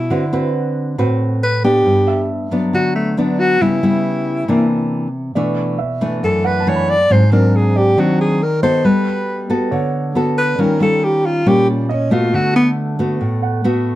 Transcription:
0.00 0.50 E4 medium
0.10 0.96 D3 medium
0.10 0.23 C4 soft
0.10 0.23 F#4 medium
0.10 0.23 B4 medium
0.33 0.94 C4 medium
0.33 0.95 F#4 medium
0.33 0.95 B4 medium
0.98 1.83 A2 medium
0.98 1.41 C4 soft
0.98 1.42 F#4 medium
0.98 1.42 B4 medium
1.43 1.63 B4 medium
1.64 2.48 B3 medium
1.64 2.48 D4 medium
1.64 2.25 G4 medium
1.86 2.71 G2 medium
2.08 3.20 E5 soft
2.51 3.13 F#3 medium
2.51 3.13 B3 medium
2.51 3.14 D4 medium
2.73 3.58 D3 medium
2.73 2.94 F#4 medium
2.95 3.20 A3 medium
3.17 3.59 F#3 medium
3.17 3.59 B3 medium
3.17 3.41 D4 medium
3.17 3.59 D4 medium
3.40 3.63 F#4 loud
3.61 4.46 C#3 medium
3.61 3.79 G3 medium
3.61 3.79 B3 medium
3.61 3.79 E4 medium
3.61 4.92 E4 medium
3.83 4.45 G3 medium
3.83 4.45 B3 medium
3.83 4.45 E4 medium
4.48 5.33 C3 medium
4.48 5.07 E3 medium
4.48 5.07 A#3 medium
4.48 5.07 D4 medium
5.35 6.21 B2 medium
5.35 5.79 E3 medium
5.35 5.79 A3 soft
5.35 5.79 D4 medium
5.35 6.48 D5 soft
5.79 6.91 E5 soft
6.01 6.63 E3 medium
6.01 6.63 A3 medium
6.01 6.63 D4 medium
6.23 7.08 F#2 medium
6.23 6.47 A4 medium
6.44 6.70 B4 medium
6.44 7.28 F#5 medium
6.60 7.09 A5 soft
6.67 6.96 E3 medium
6.67 6.96 A3 medium
6.67 6.96 D4 medium
6.67 6.91 C#5 medium
6.76 7.12 B5 soft
6.90 7.14 D5 loud
7.10 7.95 G#2 medium
7.10 7.23 F#3 medium
7.10 7.23 C4 soft
7.10 7.23 D4 medium
7.10 7.32 C5 medium
7.32 7.94 F#3 medium
7.32 7.94 C4 medium
7.32 7.94 D4 medium
7.32 7.57 A#4 medium
7.56 7.79 G#4 medium
7.76 8.01 G4 medium
7.76 8.88 D5 soft
7.97 8.82 D#3 medium
7.97 8.41 F#3 soft
7.97 8.41 C4 medium
7.97 8.41 D4 medium
7.97 8.20 F#4 medium
8.21 8.44 G#4 medium
8.43 8.62 A#4 medium
8.63 9.46 B3 medium
8.63 9.47 F#4 medium
8.63 9.47 A4 medium
8.63 8.87 C5 loud
8.63 9.03 D#5 soft
8.85 9.70 G3 medium
8.85 9.50 B4 medium
9.50 10.12 B3 medium
9.50 10.12 F#4 medium
9.50 10.12 A4 medium
9.71 10.57 D3 medium
9.71 10.77 C#5 soft
10.15 10.57 B3 medium
10.15 10.57 F#4 medium
10.15 10.58 A4 medium
10.38 10.62 B4 loud
10.58 11.44 D#3 medium
10.58 10.77 G3 medium
10.58 10.77 C#4 medium
10.58 10.77 F4 medium
10.58 10.82 A#4 medium
10.80 11.43 G3 soft
10.80 11.43 C#4 medium
10.80 11.43 F4 medium
10.80 11.06 A4 medium
11.04 11.27 G4 medium
11.26 11.50 F4 medium
11.46 12.31 A#2 medium
11.46 11.89 G3 medium
11.46 11.90 C#4 medium
11.46 11.90 F4 medium
11.46 11.69 G4 medium
11.70 11.86 A#3 soft
11.89 12.13 C#4 medium
11.89 12.30 D#5 medium
12.11 12.95 A3 medium
12.11 12.95 B3 medium
12.11 12.36 F4 medium
12.11 12.96 F#4 medium
12.34 13.19 D3 medium
12.34 12.55 F#4 medium
12.56 12.69 B3 loud
12.99 13.61 A3 medium
12.99 13.61 B3 medium
12.99 13.61 F#4 medium
13.21 13.95 A2 medium
13.42 13.95 F#5 soft
13.64 13.95 A3 medium
13.64 13.95 B3 medium
13.64 13.95 F#4 medium

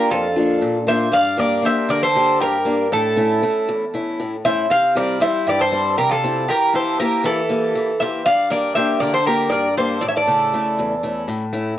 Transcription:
0.00 0.26 A#3 medium
0.00 0.26 D4 soft
0.00 0.26 F4 medium
0.00 0.11 A#4 medium
0.10 0.60 F2 medium
0.10 0.83 F4 medium
0.10 0.83 A4 medium
0.36 0.77 A#3 soft
0.36 0.77 D4 soft
0.36 0.77 F4 soft
0.62 1.11 A#2 medium
0.87 1.07 A#3 soft
0.87 1.08 D4 soft
0.87 1.08 F4 soft
0.87 1.11 C5 medium
0.87 1.11 E5 medium
1.12 1.62 G2 medium
1.12 1.37 D5 medium
1.12 1.39 F5 loud
1.37 1.61 A#3 medium
1.37 1.61 D4 soft
1.37 1.61 G4 medium
1.37 1.62 A#4 medium
1.37 1.63 D5 medium
1.62 2.04 A#3 medium
1.62 2.04 D4 soft
1.62 2.04 G4 soft
1.62 1.88 C5 medium
1.66 1.89 E5 medium
1.89 2.39 D3 medium
1.89 2.02 A#4 medium
1.89 2.01 D5 medium
2.03 2.38 A4 medium
2.03 2.41 C5 medium
2.15 2.56 A#3 soft
2.15 2.56 D4 soft
2.15 2.57 G4 medium
2.40 2.90 G2 medium
2.40 2.88 G4 medium
2.40 2.93 A#4 medium
2.65 2.86 A#3 medium
2.65 2.86 D4 soft
2.65 2.87 G4 medium
2.92 3.41 A2 medium
2.92 4.41 E4 medium
2.92 4.41 A4 medium
3.16 3.42 A3 medium
3.16 3.42 C#4 soft
3.16 3.42 E4 medium
3.43 3.84 A3 medium
3.43 3.84 C#4 soft
3.43 3.84 E4 medium
3.69 4.18 E2 medium
3.94 4.35 A3 soft
3.94 4.35 C#4 soft
3.94 4.35 E4 medium
4.20 4.69 A2 medium
4.45 4.65 A3 soft
4.45 4.65 C#4 soft
4.45 4.66 E4 medium
4.45 4.69 C5 medium
4.45 4.69 E5 medium
4.70 5.20 C3 medium
4.70 4.94 C5 medium
4.70 4.94 F5 medium
4.95 5.19 G3 soft
4.95 5.19 C4 soft
4.95 5.20 E4 medium
4.95 5.20 A#4 medium
4.95 5.20 D5 medium
5.20 5.61 G3 medium
5.20 5.61 C4 soft
5.20 5.62 E4 medium
5.20 5.45 C5 medium
5.20 5.45 E5 medium
5.47 5.96 G2 medium
5.47 5.59 G4 medium
5.47 5.61 D5 medium
5.59 5.95 A4 medium
5.59 5.96 C5 medium
5.72 6.13 G3 medium
5.72 6.13 C4 soft
5.72 6.13 E4 medium
5.98 6.47 C3 medium
5.98 6.09 G4 medium
5.98 6.09 A#4 medium
6.10 6.45 F4 medium
6.10 6.50 A4 medium
6.24 6.44 G3 soft
6.24 6.44 C4 soft
6.24 6.44 E4 medium
6.48 6.98 E3 medium
6.48 6.72 G4 medium
6.48 6.75 A#4 medium
6.73 6.98 A#3 soft
6.73 6.99 E4 soft
6.73 6.99 G4 soft
6.73 6.98 A4 medium
6.73 6.98 C5 medium
7.00 7.40 A#3 medium
7.00 7.40 E4 soft
7.00 7.23 G4 medium
7.00 7.40 G4 medium
7.00 7.23 A#4 medium
7.24 7.73 E3 medium
7.24 7.97 E4 medium
7.24 8.03 A4 medium
7.49 7.90 A#3 medium
7.49 7.90 E4 soft
7.49 7.90 G4 soft
7.75 8.24 E3 medium
8.00 8.21 A#3 medium
8.00 8.21 E4 soft
8.00 8.21 G4 medium
8.00 8.25 C5 medium
8.00 8.25 E5 medium
8.26 8.75 G2 medium
8.26 8.49 D5 medium
8.26 8.49 F5 loud
8.50 8.75 A#3 soft
8.50 8.76 D4 soft
8.50 8.76 G4 medium
8.50 8.74 A#4 medium
8.50 8.75 D5 medium
8.75 9.17 A#3 medium
8.75 9.17 D4 medium
8.75 9.17 G4 medium
8.75 8.99 C5 medium
8.75 8.99 E5 medium
9.00 9.50 D3 medium
9.00 9.13 A#4 medium
9.00 9.14 D5 medium
9.14 9.26 A4 medium
9.14 9.27 C5 medium
9.26 9.67 A#3 soft
9.26 9.68 D4 soft
9.26 9.50 G4 medium
9.26 9.68 G4 medium
9.26 9.50 A#4 medium
9.50 10.01 G2 medium
9.50 9.75 A#4 medium
9.50 9.74 D5 medium
9.77 9.97 A#3 soft
9.77 9.98 D4 soft
9.77 9.98 G4 soft
9.77 10.00 A4 medium
9.77 10.01 C5 medium
10.01 10.51 A2 medium
10.01 10.08 A4 medium
10.01 10.08 D5 medium
10.09 10.15 C#5 medium
10.09 10.16 E5 medium
10.16 11.24 A4 medium
10.16 11.24 D5 medium
10.27 10.53 C#3 soft
10.27 10.53 A3 medium
10.27 10.53 E4 soft
10.54 10.94 C#3 medium
10.54 10.93 A3 soft
10.54 10.94 E4 soft
10.79 11.27 E2 medium
11.03 11.43 A3 medium
11.03 11.43 C#4 soft
11.03 11.44 E4 medium
11.28 11.77 A2 medium
11.53 11.73 A3 soft
11.53 11.73 C#4 soft
11.53 11.74 E4 soft

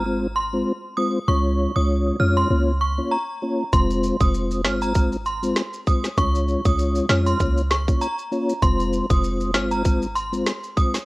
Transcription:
0.00 0.63 G#1 medium
0.05 0.27 G#3 medium
0.05 0.27 C4 medium
0.05 0.27 F4 medium
0.05 0.27 C5 loud
0.36 0.50 C6 medium
0.53 0.72 G#3 medium
0.53 0.72 C4 medium
0.53 0.72 F4 medium
0.53 0.72 C5 medium
0.97 1.19 G#3 medium
0.97 1.19 C4 medium
0.97 1.19 F4 medium
0.97 1.19 C5 medium
0.97 1.11 D#6 medium
1.27 1.67 C#2 loud
1.27 1.71 G#3 medium
1.27 1.71 C#4 medium
1.27 1.71 F4 medium
1.27 1.72 C#5 medium
1.27 1.52 C#6 medium
1.75 2.11 C#2 medium
1.75 2.16 G#3 medium
1.75 2.16 C#4 medium
1.75 2.17 F4 medium
1.75 2.17 C#5 medium
1.75 1.86 D#6 medium
2.19 2.45 F2 medium
2.19 2.48 G#3 medium
2.19 2.48 C#4 medium
2.19 2.48 F4 medium
2.19 2.48 C#5 medium
2.19 2.33 F6 medium
2.37 2.48 C6 medium
2.50 3.00 C#2 loud
2.50 2.72 A#3 medium
2.50 2.72 C#4 medium
2.50 2.72 F4 medium
2.50 2.72 C#5 loud
2.81 2.95 C#6 medium
2.98 3.17 A#3 medium
2.98 3.17 C#4 medium
2.98 3.17 F4 medium
2.98 3.17 C#5 medium
3.11 3.56 A#5 medium
3.42 3.64 A#3 medium
3.42 3.64 C#4 medium
3.42 3.64 F4 medium
3.42 3.64 C#5 medium
3.73 4.11 F1 loud
3.73 4.16 G#3 medium
3.73 4.16 C4 medium
3.73 4.17 F4 medium
3.73 4.17 C5 loud
3.73 3.97 C6 medium
3.73 kick loud
3.73 maracas medium
3.90 maracas medium
4.03 maracas medium
4.20 4.66 F1 loud
4.20 4.61 C4 medium
4.20 4.61 F4 medium
4.20 4.62 C5 medium
4.20 4.31 D#6 medium
4.20 kick loud
4.20 maracas medium
4.34 maracas medium
4.51 maracas medium
4.64 5.52 G#1 medium
4.64 4.93 G#3 medium
4.64 4.93 C4 medium
4.64 4.93 F4 medium
4.64 4.93 C5 medium
4.64 4.79 F6 medium
4.64 snare loud
4.64 maracas medium
4.82 4.93 A#5 medium
4.82 maracas medium
4.95 5.17 G#3 medium
4.95 5.17 C4 medium
4.95 5.17 F4 medium
4.95 5.17 C5 loud
4.95 kick loud
4.95 maracas medium
5.12 maracas medium
5.26 5.40 C6 medium
5.26 maracas medium
5.43 5.62 G#3 medium
5.43 5.62 C4 medium
5.43 5.62 F4 medium
5.43 5.62 C5 medium
5.43 maracas medium
5.56 snare loud
5.56 maracas medium
5.73 maracas soft
5.87 6.09 G#3 medium
5.87 6.09 C4 medium
5.87 6.09 F4 medium
5.87 6.09 C5 medium
5.87 6.01 D#6 medium
5.87 kick medium
5.87 maracas soft
6.04 snare medium
6.04 maracas medium
6.17 6.56 C#2 loud
6.17 6.61 G#3 medium
6.17 6.61 C#4 medium
6.17 6.61 F4 medium
6.17 6.62 C#5 loud
6.17 6.42 C#6 medium
6.17 kick loud
6.17 maracas medium
6.35 maracas medium
6.48 maracas medium
6.65 7.01 C#2 medium
6.65 7.06 G#3 medium
6.65 7.06 C#4 medium
6.65 7.06 F4 medium
6.65 7.07 C#5 medium
6.65 6.76 D#6 medium
6.65 kick medium
6.65 maracas medium
6.79 maracas medium
6.96 maracas medium
7.09 7.34 F2 loud
7.09 7.38 G#3 medium
7.09 7.38 C#4 medium
7.09 7.38 F4 medium
7.09 7.38 C#5 medium
7.09 7.23 F6 medium
7.09 snare loud
7.09 maracas medium
7.26 7.37 C6 medium
7.26 maracas medium
7.40 7.90 C#2 loud
7.40 7.62 A#3 medium
7.40 7.62 C#4 medium
7.40 7.62 F4 medium
7.40 7.62 C#5 loud
7.40 kick loud
7.40 maracas medium
7.57 maracas medium
7.71 7.84 C#6 medium
7.71 snare loud
7.71 maracas medium
7.88 8.07 A#3 medium
7.88 8.07 C#4 medium
7.88 8.07 F4 medium
7.88 8.07 C#5 medium
7.88 kick loud
7.88 maracas medium
8.01 8.46 A#5 medium
8.01 maracas medium
8.18 maracas medium
8.32 8.53 A#3 medium
8.32 8.53 C#4 medium
8.32 8.54 F4 medium
8.32 8.54 C#5 medium
8.32 maracas medium
8.49 maracas medium
8.62 9.01 F1 loud
8.62 9.06 G#3 medium
8.62 9.06 C4 medium
8.62 9.06 F4 medium
8.62 9.06 C5 loud
8.62 8.87 C6 medium
8.62 kick loud
8.62 maracas medium
8.80 maracas medium
8.93 maracas medium
9.10 9.56 F1 medium
9.10 9.51 G#3 medium
9.10 9.51 C4 medium
9.10 9.51 F4 medium
9.10 9.51 C5 medium
9.10 9.21 D#6 medium
9.10 kick loud
9.10 maracas medium
9.24 maracas medium
9.40 maracas medium
9.54 10.42 G#1 medium
9.54 9.83 G#3 medium
9.54 9.83 C4 medium
9.54 9.83 F4 medium
9.54 9.83 C5 medium
9.54 9.68 F6 medium
9.54 snare loud
9.54 maracas medium
9.71 9.82 A#5 medium
9.71 maracas medium
9.85 10.06 C4 medium
9.85 10.07 C5 medium
9.85 kick loud
9.85 maracas medium
10.02 maracas medium
10.15 10.29 C6 medium
10.15 maracas medium
10.32 10.52 G#3 medium
10.32 10.52 C4 medium
10.32 10.52 F4 medium
10.32 10.52 C5 medium
10.32 maracas medium
10.46 snare loud
10.46 maracas medium
10.63 maracas soft
10.76 10.98 G#3 medium
10.76 10.98 C4 medium
10.76 10.98 F4 medium
10.76 10.98 C5 medium
10.76 10.90 D#6 medium
10.76 kick medium
10.76 maracas soft
10.94 snare medium
10.94 maracas medium

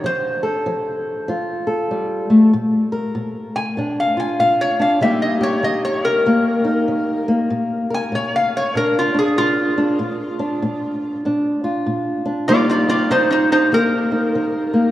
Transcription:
0.04 0.61 F3 medium
0.04 0.43 C5 medium
0.43 1.66 A4 medium
0.66 1.24 F3 medium
1.28 1.86 F3 medium
1.28 2.50 F4 medium
1.67 2.50 A4 medium
1.91 2.29 G3 medium
2.30 2.53 A3 medium
2.53 3.11 A#2 medium
2.92 5.04 A#4 medium
3.15 3.72 A#2 medium
3.56 3.96 G#5 medium
3.77 4.35 A#2 medium
3.77 4.78 D4 medium
4.00 4.19 F5 medium
4.17 4.99 F4 medium
4.17 4.39 G#5 medium
4.39 4.97 A#2 medium
4.39 4.60 F5 medium
4.61 4.81 C#5 medium
4.79 4.99 D4 medium
4.79 5.01 F5 medium
5.01 5.59 D#3 medium
5.01 7.48 G3 medium
5.01 6.26 A#3 medium
5.01 6.63 D#4 medium
5.01 5.39 G4 medium
5.01 5.22 E5 medium
5.22 5.42 D#5 medium
5.41 7.50 G4 medium
5.41 5.63 C#5 medium
5.63 6.21 D#3 medium
5.63 5.84 D#5 medium
5.85 6.05 C#5 medium
6.05 7.26 A#4 medium
6.26 6.83 D#3 medium
6.26 7.28 A#3 medium
6.65 7.47 D#4 medium
6.88 7.46 D#3 medium
7.28 8.75 A#3 medium
7.50 8.08 A#2 medium
7.90 11.40 A#4 medium
7.94 8.13 G#5 medium
8.12 8.70 A#2 medium
8.12 8.34 C#5 medium
8.36 8.55 F5 medium
8.57 8.76 C#5 medium
8.75 9.33 A#2 medium
8.75 9.13 D4 medium
8.75 8.96 A#4 medium
8.99 9.17 F4 medium
9.14 9.76 D4 medium
9.19 9.38 G#4 medium
9.37 9.95 A#2 medium
9.37 11.20 F4 loud
9.78 9.97 D4 medium
9.99 10.57 A#2 medium
10.39 11.24 D4 medium
10.62 11.19 A#2 medium
11.25 11.82 A#2 medium
11.25 12.24 D4 medium
11.64 12.46 F4 medium
11.86 12.43 A#2 medium
12.25 12.45 D4 medium
12.48 13.06 D#3 medium
12.48 14.91 G3 medium
12.48 13.72 A#3 medium
12.48 14.10 D#4 medium
12.48 12.68 F4 medium
12.48 12.88 G4 medium
12.48 12.68 D5 medium
12.70 12.88 F4 medium
12.70 12.88 D5 medium
12.89 13.09 F4 medium
12.89 14.91 G4 medium
12.89 13.10 D5 medium
13.10 13.68 D#3 medium
13.10 13.29 D#4 medium
13.10 13.31 C5 loud
13.30 13.50 D#4 medium
13.30 13.51 C5 medium
13.52 13.71 D#4 medium
13.52 13.72 C5 medium
13.72 14.29 D#3 medium
13.72 14.73 A#3 medium
13.72 14.91 A#4 loud
14.12 14.91 D#4 medium
14.35 14.91 D#3 medium
14.74 14.91 A#3 medium

